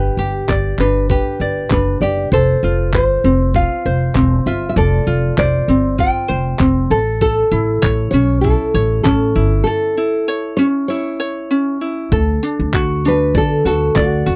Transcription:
Already playing: upright bass G1, ukulele D4 G4 B4 D5, nylon-string guitar G4
0.17 upright bass G1, ukulele G4
0.48 upright bass G1, ukulele D5, kick, clap
0.78 upright bass G1, ukulele D4, nylon-string guitar B4, clap
1.10 ukulele G4, nylon-string guitar B4, kick
1.40 upright bass G1, ukulele D5
1.70 upright bass F#1, ukulele D4, nylon-string guitar B4, kick, clap
2.01 upright bass F#1, ukulele G4, nylon-string guitar D5
2.32 upright bass F1, ukulele A4, nylon-string guitar C5, kick
2.63 upright bass F1, ukulele F4
2.93 upright bass G1, ukulele C5, nylon-string guitar C5, kick, clap
3.24 upright bass F1, ukulele C4
3.54 ukulele F4, nylon-string guitar F5, kick
3.86 upright bass F1, ukulele C5
4.15 upright bass E1, ukulele C4, kick, clap
4.46 upright bass G1, ukulele F4, nylon-string guitar E5
4.69 nylon-string guitar E5
4.76 upright bass F1, ukulele A4, nylon-string guitar D5, kick
5.07 upright bass F1, ukulele F4
5.38 upright bass F1, ukulele C5, nylon-string guitar D5, kick, clap
5.68 upright bass G1, ukulele C4
5.98 ukulele F4, nylon-string guitar G5, kick
6.28 upright bass F1, ukulele C5
6.59 upright bass F1, ukulele C4, kick, clap
6.90 upright bass A1, ukulele A4
7.21 ukulele A4, nylon-string guitar A4, kick
7.52 upright bass A1, ukulele E4
7.82 upright bass A1, ukulele C#5, kick, clap
8.11 upright bass B1, ukulele C#4, nylon-string guitar C#5
8.41 ukulele E4, nylon-string guitar A4, kick
8.74 upright bass A1, ukulele C#5
9.03 upright bass A1, ukulele C#4, nylon-string guitar A4, kick, clap
9.35 upright bass G1, ukulele E4
9.64 nylon-string guitar A4, ukulele A4
9.98 ukulele E4
10.28 ukulele C#5
10.57 ukulele C#4, nylon-string guitar C#5
10.88 ukulele E4, nylon-string guitar C#5
11.20 ukulele C#5
11.51 ukulele C#4
11.81 ukulele E4
12.12 upright bass D2, ukulele A4, kick
12.43 ukulele D4, tambourine
12.59 upright bass D2
12.74 ukulele F#4, kick, clap
13.05 ukulele D4, nylon-string guitar B4, tambourine
13.35 upright bass D3, nylon-string guitar A4, ukulele D5, kick
13.65 upright bass D2, ukulele F#4, nylon-string guitar A4, tambourine
13.96 upright bass D2, nylon-string guitar F#4, ukulele D5, kick, clap
14.26 upright bass E2, ukulele F#4, tambourine

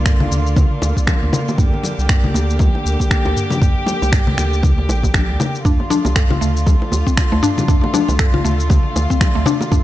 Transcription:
Already playing: sub bass C2, string section D3 A#3 F4
0.06 finger snap, kick, mid tom, shaker
0.20 low conga
0.31 sub bass D2, low bongo, shaker
0.47 shaker
0.56 kick, low bongo, low conga, shaker
0.82 sub bass D2, high bongo, low bongo, shaker
0.97 kick, shaker
1.07 finger snap, kick, high conga, shaker
1.22 sub bass D2, low bongo
1.33 high bongo, low conga, shaker
1.48 low bongo, shaker
1.58 sub bass D2, string section G4, kick, mid tom, shaker
1.74 low bongo
1.84 high conga, shaker
1.98 sub bass C2, shaker
2.09 finger snap, kick, mid tom, low bongo, shaker
2.24 low conga
2.34 sub bass D2, low bongo, shaker
2.50 shaker
2.59 kick, low bongo, high conga, shaker
2.75 high bongo
2.85 sub bass D2, shaker
3.00 kick, low bongo, shaker
3.11 finger snap, kick, shaker
3.25 sub bass D2, high bongo, low bongo
3.36 mid tom, shaker
3.50 low bongo, high conga, low conga, shaker
3.62 sub bass D2, kick, mid tom, shaker
3.86 high bongo, low bongo, high conga, shaker
4.02 sub bass C2, high bongo, shaker
4.12 finger snap, kick, mid tom, low bongo, shaker
4.27 low conga
4.37 sub bass D2, finger snap, low bongo, high conga, shaker
4.53 shaker
4.63 kick, low conga, shaker
4.78 low bongo
4.89 sub bass A1, high bongo, shaker
5.03 kick, low bongo, shaker
5.14 finger snap, kick, high conga, shaker
5.29 sub bass D2, low bongo
5.40 high bongo, low conga, shaker
5.55 shaker
5.65 sub bass D2, string section D3 A3 F4, synth pluck D4, kick, mid tom, shaker
5.80 low bongo
5.90 synth pluck D4, high conga, shaker
6.05 sub bass C2, low bongo, shaker
6.16 synth pluck A4, finger snap, kick, mid tom, shaker
6.30 synth pluck F4, low bongo, low conga
6.41 sub bass D2, synth pluck A3, shaker
6.57 shaker
6.66 kick, low bongo, high conga, shaker
6.82 high bongo
6.92 sub bass D2, low bongo, shaker
7.07 synth pluck C4, kick, shaker
7.17 finger snap, kick, low bongo, shaker
7.32 sub bass D2, synth pluck A3, high bongo
7.43 synth pluck D4, mid tom, shaker
7.58 low bongo, high conga, low conga, shaker
7.68 sub bass D2, synth pluck D4, kick, mid tom, shaker
7.84 low bongo
7.94 synth pluck D4, high bongo, high conga, shaker
8.08 sub bass C2, high bongo, low bongo, shaker
8.19 synth pluck A4, finger snap, kick, mid tom, shaker
8.34 synth pluck F4, low conga
8.45 sub bass D2, synth pluck A3, low bongo, shaker
8.60 shaker
8.70 kick, low bongo, low conga, shaker
8.95 sub bass D2, high bongo, low bongo, shaker
9.10 synth pluck C4, kick, shaker
9.21 finger snap, kick, high conga, shaker
9.35 sub bass D2, synth pluck A3, low bongo
9.46 synth pluck D4, high bongo, low conga, shaker
9.61 low bongo, shaker
9.72 sub bass D2, synth pluck D4, kick, mid tom, shaker

